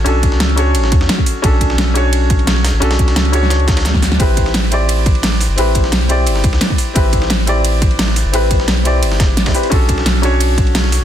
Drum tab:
RD |x-x-xxx-x-x-x-x-|x-x-x-x-x-xxx-x-|xx-xxxx-xxxxx-x-|x-x-x-x-x-xxx-x-|
HH |x-x-x-x-x-x-x-o-|x-x-x-x-x-x-x-o-|x-x-x-x-x-x-x-o-|x-x-x-x-x-x-x-o-|
SD |---oo----o-oo---|---oo-------ooo-|oo-oo--oo-oooooo|---oo-------ooo-|
BD |--o-------o--o--|o-o-------o-----|--o-------o--o--|o-o-------o-----|

RD |x-x-xxx-x-x-x-x-|x-x-x-x-x-xxx-x-|x-x-xxx-x-x-xx-x|x-x-x-x-x-xxx-x-|
HH |x-x-x-x-x-x-x-o-|x-x-x-x-x-x-x-o-|x-x-x-x-x-x-x-o-|x-x-x-x-x-x-x-o-|
SD |---oo----o-oo---|---oo-------ooo-|---oo----oo-oo--|---oo-------ooo-|
BD |--o-------o--o--|o-o-------o-----|--o-------o--o--|o-o-------o-----|